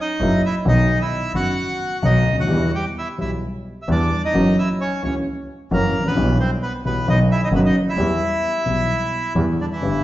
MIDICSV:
0, 0, Header, 1, 4, 480
1, 0, Start_track
1, 0, Key_signature, 1, "minor"
1, 0, Tempo, 458015
1, 690, Time_signature, 4, 2, 24, 8
1, 10519, End_track
2, 0, Start_track
2, 0, Title_t, "Bandoneon"
2, 0, Program_c, 0, 23
2, 8, Note_on_c, 0, 75, 90
2, 12, Note_on_c, 0, 63, 74
2, 435, Note_off_c, 0, 75, 0
2, 437, Note_off_c, 0, 63, 0
2, 476, Note_on_c, 0, 76, 80
2, 479, Note_on_c, 0, 64, 63
2, 577, Note_off_c, 0, 76, 0
2, 580, Note_off_c, 0, 64, 0
2, 712, Note_on_c, 0, 63, 65
2, 719, Note_on_c, 0, 75, 88
2, 1032, Note_off_c, 0, 63, 0
2, 1036, Note_off_c, 0, 75, 0
2, 1062, Note_on_c, 0, 76, 81
2, 1066, Note_on_c, 0, 64, 58
2, 1387, Note_off_c, 0, 76, 0
2, 1389, Note_off_c, 0, 64, 0
2, 1416, Note_on_c, 0, 66, 65
2, 1428, Note_on_c, 0, 78, 79
2, 2091, Note_off_c, 0, 66, 0
2, 2145, Note_on_c, 0, 63, 61
2, 2150, Note_on_c, 0, 75, 82
2, 2160, Note_off_c, 0, 78, 0
2, 2476, Note_off_c, 0, 63, 0
2, 2478, Note_off_c, 0, 75, 0
2, 2513, Note_on_c, 0, 66, 60
2, 2519, Note_on_c, 0, 78, 76
2, 2845, Note_off_c, 0, 66, 0
2, 2848, Note_off_c, 0, 78, 0
2, 2880, Note_on_c, 0, 67, 51
2, 2881, Note_on_c, 0, 79, 74
2, 2985, Note_off_c, 0, 67, 0
2, 2986, Note_off_c, 0, 79, 0
2, 3126, Note_on_c, 0, 76, 72
2, 3127, Note_on_c, 0, 64, 56
2, 3231, Note_off_c, 0, 64, 0
2, 3231, Note_off_c, 0, 76, 0
2, 3358, Note_on_c, 0, 64, 46
2, 3366, Note_on_c, 0, 76, 60
2, 3464, Note_off_c, 0, 64, 0
2, 3470, Note_off_c, 0, 76, 0
2, 4005, Note_on_c, 0, 76, 51
2, 4075, Note_off_c, 0, 76, 0
2, 4098, Note_on_c, 0, 62, 62
2, 4102, Note_on_c, 0, 74, 82
2, 4423, Note_off_c, 0, 62, 0
2, 4426, Note_off_c, 0, 74, 0
2, 4456, Note_on_c, 0, 75, 81
2, 4457, Note_on_c, 0, 63, 62
2, 4782, Note_off_c, 0, 63, 0
2, 4782, Note_off_c, 0, 75, 0
2, 4806, Note_on_c, 0, 76, 81
2, 4810, Note_on_c, 0, 64, 68
2, 4911, Note_off_c, 0, 76, 0
2, 4914, Note_off_c, 0, 64, 0
2, 5038, Note_on_c, 0, 73, 76
2, 5041, Note_on_c, 0, 61, 63
2, 5260, Note_off_c, 0, 61, 0
2, 5270, Note_off_c, 0, 73, 0
2, 5285, Note_on_c, 0, 73, 62
2, 5295, Note_on_c, 0, 61, 48
2, 5390, Note_off_c, 0, 73, 0
2, 5398, Note_off_c, 0, 61, 0
2, 6006, Note_on_c, 0, 70, 86
2, 6010, Note_on_c, 0, 58, 63
2, 6330, Note_off_c, 0, 58, 0
2, 6362, Note_off_c, 0, 70, 0
2, 6363, Note_on_c, 0, 71, 82
2, 6371, Note_on_c, 0, 59, 61
2, 6686, Note_off_c, 0, 71, 0
2, 6690, Note_off_c, 0, 59, 0
2, 6708, Note_on_c, 0, 72, 77
2, 6714, Note_on_c, 0, 60, 56
2, 6813, Note_off_c, 0, 72, 0
2, 6818, Note_off_c, 0, 60, 0
2, 6945, Note_on_c, 0, 71, 78
2, 6954, Note_on_c, 0, 59, 60
2, 7050, Note_off_c, 0, 71, 0
2, 7057, Note_off_c, 0, 59, 0
2, 7189, Note_on_c, 0, 71, 78
2, 7197, Note_on_c, 0, 59, 60
2, 7408, Note_off_c, 0, 59, 0
2, 7427, Note_off_c, 0, 71, 0
2, 7431, Note_on_c, 0, 75, 83
2, 7437, Note_on_c, 0, 63, 67
2, 7534, Note_off_c, 0, 75, 0
2, 7539, Note_off_c, 0, 63, 0
2, 7664, Note_on_c, 0, 76, 90
2, 7671, Note_on_c, 0, 64, 73
2, 7768, Note_off_c, 0, 76, 0
2, 7772, Note_off_c, 0, 64, 0
2, 7798, Note_on_c, 0, 75, 81
2, 7800, Note_on_c, 0, 63, 65
2, 7845, Note_off_c, 0, 75, 0
2, 7847, Note_off_c, 0, 63, 0
2, 7917, Note_on_c, 0, 71, 92
2, 7923, Note_on_c, 0, 59, 68
2, 7963, Note_off_c, 0, 71, 0
2, 7968, Note_off_c, 0, 59, 0
2, 8025, Note_on_c, 0, 75, 81
2, 8030, Note_on_c, 0, 63, 64
2, 8128, Note_off_c, 0, 75, 0
2, 8131, Note_off_c, 0, 63, 0
2, 8270, Note_on_c, 0, 76, 84
2, 8275, Note_on_c, 0, 64, 70
2, 9780, Note_off_c, 0, 76, 0
2, 9782, Note_off_c, 0, 64, 0
2, 10072, Note_on_c, 0, 62, 68
2, 10080, Note_on_c, 0, 50, 53
2, 10123, Note_off_c, 0, 62, 0
2, 10129, Note_off_c, 0, 50, 0
2, 10193, Note_on_c, 0, 64, 72
2, 10201, Note_on_c, 0, 52, 55
2, 10519, Note_off_c, 0, 52, 0
2, 10519, Note_off_c, 0, 64, 0
2, 10519, End_track
3, 0, Start_track
3, 0, Title_t, "Grand piano"
3, 0, Program_c, 1, 0
3, 214, Note_on_c, 1, 54, 77
3, 215, Note_on_c, 1, 49, 67
3, 216, Note_on_c, 1, 64, 75
3, 217, Note_on_c, 1, 58, 59
3, 219, Note_on_c, 1, 42, 81
3, 414, Note_off_c, 1, 49, 0
3, 414, Note_off_c, 1, 54, 0
3, 415, Note_off_c, 1, 58, 0
3, 415, Note_off_c, 1, 64, 0
3, 417, Note_off_c, 1, 42, 0
3, 683, Note_on_c, 1, 51, 66
3, 685, Note_on_c, 1, 47, 77
3, 686, Note_on_c, 1, 54, 62
3, 687, Note_on_c, 1, 59, 62
3, 688, Note_on_c, 1, 35, 80
3, 690, Note_on_c, 1, 66, 75
3, 885, Note_off_c, 1, 51, 0
3, 886, Note_off_c, 1, 47, 0
3, 887, Note_off_c, 1, 54, 0
3, 887, Note_off_c, 1, 59, 0
3, 888, Note_off_c, 1, 35, 0
3, 889, Note_off_c, 1, 66, 0
3, 1407, Note_on_c, 1, 51, 41
3, 1408, Note_on_c, 1, 42, 45
3, 1408, Note_on_c, 1, 54, 36
3, 1409, Note_on_c, 1, 59, 39
3, 1410, Note_on_c, 1, 30, 46
3, 1411, Note_on_c, 1, 66, 44
3, 1607, Note_off_c, 1, 42, 0
3, 1607, Note_off_c, 1, 51, 0
3, 1607, Note_off_c, 1, 54, 0
3, 1608, Note_off_c, 1, 30, 0
3, 1608, Note_off_c, 1, 59, 0
3, 1609, Note_off_c, 1, 66, 0
3, 2122, Note_on_c, 1, 35, 76
3, 2124, Note_on_c, 1, 51, 63
3, 2126, Note_on_c, 1, 54, 60
3, 2126, Note_on_c, 1, 66, 73
3, 2127, Note_on_c, 1, 47, 77
3, 2127, Note_on_c, 1, 59, 62
3, 2328, Note_off_c, 1, 35, 0
3, 2329, Note_off_c, 1, 51, 0
3, 2330, Note_off_c, 1, 47, 0
3, 2330, Note_off_c, 1, 54, 0
3, 2330, Note_off_c, 1, 66, 0
3, 2331, Note_off_c, 1, 59, 0
3, 2421, Note_on_c, 1, 37, 44
3, 2487, Note_off_c, 1, 37, 0
3, 2492, Note_on_c, 1, 38, 53
3, 2545, Note_on_c, 1, 39, 61
3, 2553, Note_off_c, 1, 38, 0
3, 2592, Note_on_c, 1, 52, 80
3, 2597, Note_on_c, 1, 40, 75
3, 2597, Note_on_c, 1, 59, 57
3, 2598, Note_on_c, 1, 55, 56
3, 2600, Note_on_c, 1, 67, 66
3, 2610, Note_off_c, 1, 39, 0
3, 2811, Note_off_c, 1, 40, 0
3, 2811, Note_off_c, 1, 55, 0
3, 2811, Note_off_c, 1, 59, 0
3, 2812, Note_off_c, 1, 52, 0
3, 2812, Note_off_c, 1, 67, 0
3, 3333, Note_on_c, 1, 52, 38
3, 3335, Note_on_c, 1, 55, 37
3, 3335, Note_on_c, 1, 59, 38
3, 3338, Note_on_c, 1, 35, 46
3, 3339, Note_on_c, 1, 47, 48
3, 3342, Note_on_c, 1, 67, 43
3, 3543, Note_off_c, 1, 52, 0
3, 3543, Note_off_c, 1, 55, 0
3, 3543, Note_off_c, 1, 59, 0
3, 3545, Note_off_c, 1, 35, 0
3, 3545, Note_off_c, 1, 47, 0
3, 3547, Note_off_c, 1, 67, 0
3, 4064, Note_on_c, 1, 52, 75
3, 4065, Note_on_c, 1, 40, 80
3, 4068, Note_on_c, 1, 59, 62
3, 4069, Note_on_c, 1, 55, 62
3, 4072, Note_on_c, 1, 67, 77
3, 4272, Note_off_c, 1, 40, 0
3, 4273, Note_off_c, 1, 52, 0
3, 4273, Note_off_c, 1, 59, 0
3, 4274, Note_off_c, 1, 55, 0
3, 4275, Note_off_c, 1, 67, 0
3, 4547, Note_on_c, 1, 58, 57
3, 4548, Note_on_c, 1, 42, 79
3, 4548, Note_on_c, 1, 52, 66
3, 4549, Note_on_c, 1, 61, 58
3, 4550, Note_on_c, 1, 54, 80
3, 4555, Note_on_c, 1, 66, 73
3, 4753, Note_off_c, 1, 42, 0
3, 4753, Note_off_c, 1, 52, 0
3, 4753, Note_off_c, 1, 58, 0
3, 4754, Note_off_c, 1, 54, 0
3, 4754, Note_off_c, 1, 61, 0
3, 4757, Note_off_c, 1, 66, 0
3, 5267, Note_on_c, 1, 58, 40
3, 5270, Note_on_c, 1, 52, 43
3, 5272, Note_on_c, 1, 61, 37
3, 5273, Note_on_c, 1, 37, 49
3, 5273, Note_on_c, 1, 49, 51
3, 5274, Note_on_c, 1, 66, 47
3, 5470, Note_off_c, 1, 58, 0
3, 5472, Note_off_c, 1, 52, 0
3, 5473, Note_off_c, 1, 37, 0
3, 5473, Note_off_c, 1, 49, 0
3, 5473, Note_off_c, 1, 61, 0
3, 5474, Note_off_c, 1, 66, 0
3, 5984, Note_on_c, 1, 42, 83
3, 5984, Note_on_c, 1, 52, 67
3, 5986, Note_on_c, 1, 54, 83
3, 5986, Note_on_c, 1, 58, 62
3, 5986, Note_on_c, 1, 61, 62
3, 5993, Note_on_c, 1, 66, 75
3, 6184, Note_off_c, 1, 42, 0
3, 6184, Note_off_c, 1, 52, 0
3, 6185, Note_off_c, 1, 54, 0
3, 6185, Note_off_c, 1, 58, 0
3, 6185, Note_off_c, 1, 61, 0
3, 6189, Note_off_c, 1, 66, 0
3, 6287, Note_on_c, 1, 32, 54
3, 6344, Note_off_c, 1, 32, 0
3, 6349, Note_on_c, 1, 33, 61
3, 6404, Note_on_c, 1, 34, 67
3, 6405, Note_off_c, 1, 33, 0
3, 6459, Note_on_c, 1, 52, 65
3, 6462, Note_off_c, 1, 34, 0
3, 6465, Note_on_c, 1, 47, 86
3, 6465, Note_on_c, 1, 67, 79
3, 6466, Note_on_c, 1, 35, 84
3, 6467, Note_on_c, 1, 55, 64
3, 6468, Note_on_c, 1, 59, 65
3, 6660, Note_off_c, 1, 52, 0
3, 6663, Note_off_c, 1, 47, 0
3, 6664, Note_off_c, 1, 35, 0
3, 6664, Note_off_c, 1, 55, 0
3, 6664, Note_off_c, 1, 67, 0
3, 6665, Note_off_c, 1, 59, 0
3, 7179, Note_on_c, 1, 52, 43
3, 7179, Note_on_c, 1, 55, 37
3, 7180, Note_on_c, 1, 35, 52
3, 7180, Note_on_c, 1, 59, 41
3, 7182, Note_on_c, 1, 67, 46
3, 7183, Note_on_c, 1, 47, 52
3, 7377, Note_off_c, 1, 52, 0
3, 7377, Note_off_c, 1, 55, 0
3, 7378, Note_off_c, 1, 35, 0
3, 7378, Note_off_c, 1, 59, 0
3, 7379, Note_off_c, 1, 47, 0
3, 7379, Note_off_c, 1, 67, 0
3, 7416, Note_on_c, 1, 51, 67
3, 7416, Note_on_c, 1, 59, 61
3, 7417, Note_on_c, 1, 47, 75
3, 7418, Note_on_c, 1, 54, 58
3, 7420, Note_on_c, 1, 35, 80
3, 7422, Note_on_c, 1, 66, 70
3, 7615, Note_off_c, 1, 47, 0
3, 7615, Note_off_c, 1, 51, 0
3, 7615, Note_off_c, 1, 59, 0
3, 7616, Note_off_c, 1, 54, 0
3, 7617, Note_off_c, 1, 35, 0
3, 7618, Note_off_c, 1, 66, 0
3, 7878, Note_on_c, 1, 51, 68
3, 7882, Note_on_c, 1, 30, 82
3, 7883, Note_on_c, 1, 42, 78
3, 7883, Note_on_c, 1, 66, 76
3, 7886, Note_on_c, 1, 54, 65
3, 7886, Note_on_c, 1, 59, 60
3, 8082, Note_off_c, 1, 51, 0
3, 8084, Note_off_c, 1, 30, 0
3, 8084, Note_off_c, 1, 42, 0
3, 8085, Note_off_c, 1, 66, 0
3, 8086, Note_off_c, 1, 54, 0
3, 8086, Note_off_c, 1, 59, 0
3, 8358, Note_on_c, 1, 52, 72
3, 8359, Note_on_c, 1, 55, 62
3, 8363, Note_on_c, 1, 40, 72
3, 8364, Note_on_c, 1, 59, 61
3, 8366, Note_on_c, 1, 67, 73
3, 8562, Note_off_c, 1, 55, 0
3, 8564, Note_off_c, 1, 40, 0
3, 8564, Note_off_c, 1, 52, 0
3, 8564, Note_off_c, 1, 59, 0
3, 8565, Note_off_c, 1, 67, 0
3, 9071, Note_on_c, 1, 47, 49
3, 9072, Note_on_c, 1, 52, 42
3, 9073, Note_on_c, 1, 55, 38
3, 9074, Note_on_c, 1, 67, 42
3, 9075, Note_on_c, 1, 35, 51
3, 9077, Note_on_c, 1, 59, 36
3, 9277, Note_off_c, 1, 47, 0
3, 9277, Note_off_c, 1, 52, 0
3, 9278, Note_off_c, 1, 55, 0
3, 9278, Note_off_c, 1, 67, 0
3, 9279, Note_off_c, 1, 35, 0
3, 9280, Note_off_c, 1, 59, 0
3, 9800, Note_on_c, 1, 52, 74
3, 9801, Note_on_c, 1, 55, 59
3, 9802, Note_on_c, 1, 40, 79
3, 9805, Note_on_c, 1, 59, 58
3, 9807, Note_on_c, 1, 67, 68
3, 10012, Note_off_c, 1, 40, 0
3, 10012, Note_off_c, 1, 55, 0
3, 10013, Note_off_c, 1, 52, 0
3, 10014, Note_off_c, 1, 59, 0
3, 10015, Note_off_c, 1, 67, 0
3, 10279, Note_on_c, 1, 50, 54
3, 10290, Note_on_c, 1, 55, 55
3, 10292, Note_on_c, 1, 31, 66
3, 10297, Note_on_c, 1, 43, 66
3, 10302, Note_on_c, 1, 71, 49
3, 10320, Note_on_c, 1, 67, 63
3, 10519, Note_off_c, 1, 31, 0
3, 10519, Note_off_c, 1, 43, 0
3, 10519, Note_off_c, 1, 50, 0
3, 10519, Note_off_c, 1, 55, 0
3, 10519, Note_off_c, 1, 67, 0
3, 10519, Note_off_c, 1, 71, 0
3, 10519, End_track
4, 0, Start_track
4, 0, Title_t, "Double bass"
4, 0, Program_c, 2, 43
4, 207, Note_on_c, 2, 30, 86
4, 411, Note_off_c, 2, 30, 0
4, 683, Note_on_c, 2, 35, 88
4, 885, Note_off_c, 2, 35, 0
4, 1405, Note_on_c, 2, 30, 52
4, 1606, Note_off_c, 2, 30, 0
4, 2127, Note_on_c, 2, 35, 88
4, 2330, Note_off_c, 2, 35, 0
4, 2363, Note_on_c, 2, 38, 49
4, 2600, Note_off_c, 2, 38, 0
4, 2606, Note_on_c, 2, 40, 82
4, 2815, Note_off_c, 2, 40, 0
4, 3348, Note_on_c, 2, 35, 48
4, 3550, Note_off_c, 2, 35, 0
4, 4069, Note_on_c, 2, 40, 81
4, 4274, Note_off_c, 2, 40, 0
4, 4550, Note_on_c, 2, 30, 85
4, 4754, Note_off_c, 2, 30, 0
4, 5278, Note_on_c, 2, 37, 55
4, 5476, Note_off_c, 2, 37, 0
4, 5991, Note_on_c, 2, 30, 96
4, 6187, Note_off_c, 2, 30, 0
4, 6221, Note_on_c, 2, 33, 56
4, 6451, Note_off_c, 2, 33, 0
4, 6458, Note_on_c, 2, 35, 92
4, 6660, Note_off_c, 2, 35, 0
4, 7172, Note_on_c, 2, 35, 52
4, 7374, Note_off_c, 2, 35, 0
4, 7402, Note_on_c, 2, 35, 88
4, 7608, Note_off_c, 2, 35, 0
4, 7877, Note_on_c, 2, 30, 93
4, 8081, Note_off_c, 2, 30, 0
4, 8352, Note_on_c, 2, 40, 87
4, 8558, Note_off_c, 2, 40, 0
4, 9073, Note_on_c, 2, 35, 55
4, 9278, Note_off_c, 2, 35, 0
4, 9801, Note_on_c, 2, 40, 83
4, 10012, Note_off_c, 2, 40, 0
4, 10295, Note_on_c, 2, 31, 77
4, 10519, Note_off_c, 2, 31, 0
4, 10519, End_track
0, 0, End_of_file